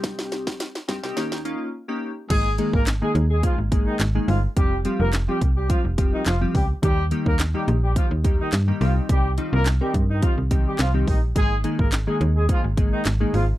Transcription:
<<
  \new Staff \with { instrumentName = "Horn section" } { \time 4/4 \key aes \major \tempo 4 = 106 r1 | <aes aes'>8 r16 <bes bes'>16 r16 <aes aes'>16 r16 <aes aes'>16 <f f'>16 r8 <ees ees'>16 r8 <f f'>16 r16 | <g g'>8 r16 <bes bes'>16 r16 <g g'>16 r16 <g g'>16 <f f'>16 r8 <ees ees'>16 <f f'>16 r16 <g g'>16 r16 | <g g'>8 r16 <bes bes'>16 r16 <g g'>16 r16 <g g'>16 <f f'>16 r8 <ees ees'>16 r8 <f f'>16 r16 |
<g g'>8 r16 <bes bes'>16 r16 <g g'>16 r16 <ees ees'>16 <f f'>16 r8 <g g'>16 <f f'>16 r16 <ees ees'>16 r16 | <aes aes'>8 r16 <bes bes'>16 r16 <aes aes'>16 r16 <aes aes'>16 <f f'>16 r8 <ees ees'>16 r8 <f f'>16 r16 | }
  \new Staff \with { instrumentName = "Synth keys" } { \time 4/4 \key aes \major <g c' ees' g'>4 r8 <g c' ees' g'>16 <g c' ees' g'>16 <bes des' ees' g'>8 <bes des' ees' f'>8 r16 <bes des' ees' g'>8 r16 | <ees aes bes ees' aes'>16 r16 <ees aes bes ees' aes'>8 r16 <ees aes bes ees' aes'>8 r16 <ees aes bes ees' aes'>16 r16 <ees aes bes ees' aes'>8 r16 <ees aes bes ees' aes'>8 r16 | <f g c' f' g'>16 r16 <f g c' f' g'>8 r16 <f g c' f' g'>8 r16 <f g c' f' g'>16 r16 <f g c' f' g'>8 r16 <f g c' f' g'>8 r16 | <ees g bes ees' g'>16 r16 <ees g bes ees' g'>8 r16 <ees g bes ees' g'>8 r16 <ees g bes ees' g'>16 r16 <ees g bes ees' g'>8 r16 <ees g bes ees' g'>16 <ees g c' ees' g'>8~ |
<ees g c' ees' g'>16 r16 <ees g c' ees' f'>8 r16 <ees g c' ees' bes'>8 r16 <ees g c' ees' g'>16 r16 <ees g c' ees' g'>8 r16 <ees g c' ees' g'>8 r16 | <ees aes bes ees' aes'>16 r16 <ees aes bes ees' aes'>8 r16 <ees aes bes ees' aes'>8 r16 <ees aes bes ees' aes'>16 r16 <ees aes bes ees' aes'>8 r16 <ees aes bes ees' aes'>8 r16 | }
  \new Staff \with { instrumentName = "FM bass" } { \clef bass \time 4/4 \key aes \major c,4. g,16 c,16 ees,4 r4 | aes,,8. aes,,8. ees,8. aes,,8. aes,,8 g,,8 | f,,8. f,,8. c,8. f,,8. f,,8 des,8 | ees,8. ees,8. bes,,8. ees,8. g,8 c,8 |
c,8. c,8. g,8. c,8. c,8 bes,,8 | aes,,8. aes,,8. ees,8. aes,,8. aes,,8 aes,,8 | }
  \new DrumStaff \with { instrumentName = "Drums" } \drummode { \time 4/4 <hh bd sn>16 sn16 <hh sn>16 <bd sn>16 <hh sn>16 <hh sn>16 <hh bd sn>16 sn16 <hh sn>16 sn16 hh8 r4 | <cymc hh bd>8 hh16 bd16 <hc hh sn>8 hh8 <hh bd>8 <hh bd>8 <hc hh sn>8 hho8 | <hh bd>8 hh8 <hc hh sn>8 <hh bd>8 <hh bd>8 <hh bd>8 <hc hh sn>8 <hho bd>8 | <hh bd>8 hh16 bd16 <hc hh sn>8 hh8 <hh bd>8 <hh bd>8 <hc hh sn>8 hho8 |
<hh bd>8 hh8 <hc hh sn>8 <hh bd>8 <hh bd>8 <hh bd>8 <hc hh sn>8 <hho bd>8 | <hh bd>8 hh16 bd16 <hc hh sn>8 hh8 <hh bd>8 <hh bd>8 <hc hh sn>8 hho8 | }
>>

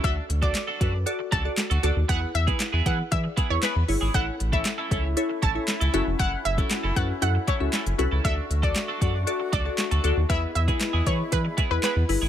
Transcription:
<<
  \new Staff \with { instrumentName = "Synth pluck" } { \time 4/4 \key d \lydian \tempo 4 = 117 e''16 r8 d''8. r4 a''16 r4 r16 | fis''8 e''8 r8 fis''8 e''16 r8 cis''16 b'8. r16 | fis''16 r8 e''8. r4 a''16 r4 r16 | fis''8 e''8 r8 fis''8 fis''8 cis''16 r4 r16 |
e''16 r8 d''8. r4 d''16 r4 r16 | e''8 e''8 r8 cis''8 b'16 r8 b'16 b'8. r16 | }
  \new Staff \with { instrumentName = "Synth pluck" } { \time 4/4 \key d \lydian <fis' a' d''>8 r16 <fis' a' d''>8 r16 <fis' a' b'>16 r16 <fis' a' d''>8 r16 <fis' a' d''>8 r16 <fis' a' d''>16 r16 | <e' gis' b'>8 r16 <e' gis' b'>8 r16 <e' gis' b'>16 r16 <e' gis' d''>8 r16 <e' gis' b'>8 r16 <e' gis' cis''>16 r16 | <e' a' cis''>8 r16 <e' a' cis''>8 r16 <e' a' cis''>16 r16 <e' a' cis''>8 r16 <e' a' cis''>8 r16 <cis' e' fis' a' e''>8~ | <cis' e' fis' a' e''>8 r16 <cis' e' fis' a' e''>8 r16 <cis' e' fis' a' b'>16 r16 <cis' e' fis' a' e''>8 r16 <cis' e' fis' a' e''>8 r16 <cis' e' fis' a' b'>16 r16 |
<fis' a' d''>8 r16 <fis' a' d''>8 r16 <fis' a' d''>16 r16 <fis' a' d''>8 r16 <fis' a' d''>8 r16 <fis' a' d''>16 r16 | <e' gis' b'>8 r16 <e' gis' b'>8 r16 <e' gis' b'>16 r16 <e' gis' d''>8 r16 <e' gis' b'>8 r16 <e' gis' b'>16 r16 | }
  \new Staff \with { instrumentName = "Clean electric guitar" } { \time 4/4 \key d \lydian <d' fis' a'>8 r16 <d' fis' a'>16 r16 <d' fis' a'>16 <d' fis' a'>16 r8. <d' fis' a'>8 r16 <d' fis' a'>16 <d' fis' a'>16 r16 | <b e' gis'>8 r16 <b e' gis'>16 r16 <b e' gis'>16 <b e' gis'>16 r8. <b e' gis'>8 <b e' gis'>8 r16 <b e' gis'>16 | <cis' e' a'>8 r16 <cis' e' a'>16 r16 <cis' e' a'>16 <cis' e' a'>16 r8. <cis' e' a'>8 r16 <cis' e' a'>16 <cis' e' a'>16 r16 | <cis' e' a'>8 r16 <cis' e' a'>16 r16 <cis' e' a'>16 <cis' e' a'>16 r8. <cis' e' a'>8 <cis' e' a'>8 r16 <cis' e' a'>16 |
<d' fis' a'>8 r16 <d' fis' a'>16 r16 <d' fis' a'>16 <d' fis' a'>16 r8. <d' fis' a'>8 r16 <d' fis' a'>16 <d' fis' a'>16 r16 | <b e' gis'>8 r16 <b e' gis'>16 r16 <b e' gis'>16 <b e' gis'>16 r8. <b e' gis'>8 <b e' gis'>8 r16 <b e' gis'>16 | }
  \new Staff \with { instrumentName = "Woodwind section" } { \time 4/4 \key d \lydian r1 | r1 | <a cis' e'>2.~ <a cis' e'>8 <fis a' gis''>8~ | <fis a' gis''>1 |
<a d' fis'>1 | <gis b e'>1 | }
  \new Staff \with { instrumentName = "Analog synth bass" } { \clef bass \time 4/4 \key d \lydian d,8 d,8. r16 fis,8. r16 cis,8 r16 d,16 d,16 dis,16 | e,8 e,8 r16 e,16 e8 e8 r16 e,16 r16 e,16 g,,16 gis,,16 | a,,8 a,,8. r16 cis,8. r16 a,,8 r16 cis,16 fis,,16 f,,16 | fis,,8 fis,,8 r16 fis,,16 fis,8 fis,8 r16 cis,16 r16 fis,,16 c,16 cis,16 |
d,8 d,8. r16 fis,8. r16 cis,8 r16 d,16 d,16 dis,16 | e,8 e,8 r16 e,16 e8 e8 r16 e,16 r16 e,16 g,,16 gis,,16 | }
  \new DrumStaff \with { instrumentName = "Drums" } \drummode { \time 4/4 <hh bd>8 hh16 <hh bd>16 <hc hh sn>8 <hh bd>8 hh8 <hh bd>8 <hc hh sn>16 hh16 hh8 | <hh bd>8 hh16 <hh bd>16 <hc hh sn>8 <hh bd>8 <hh bd>8 <hh bd>8 <hc hh sn>8 hho8 | <hh bd>8 hh16 <hh bd>16 <hc hh sn>8 <hh bd>8 hh8 <hh bd>8 <hc hh sn>16 hh16 hh8 | <hh bd>8 hh16 <hh bd>16 <hc hh sn>8 <hh bd>8 hh8 <hh bd>8 <hc hh sn>16 hh16 hh8 |
<hh bd>8 hh16 <hh bd>16 <hc hh sn>8 <hh bd>8 hh8 <hh bd>8 <hc hh sn>16 hh16 hh8 | <hh bd>8 hh16 <hh bd>16 <hc hh sn>8 <hh bd>8 <hh bd>8 <hh bd>8 <hc hh sn>8 hho8 | }
>>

